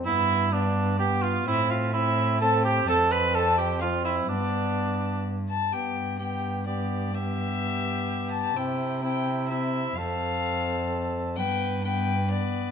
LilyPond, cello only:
\new Staff \with { instrumentName = "Cello" } { \clef bass \time 3/4 \key g \mixolydian \tempo 4 = 127 g,2. | a,2. | f,2. | g,2~ g,8 r8 |
g,2.~ | g,2. | c2. | f,2. |
g,2. | }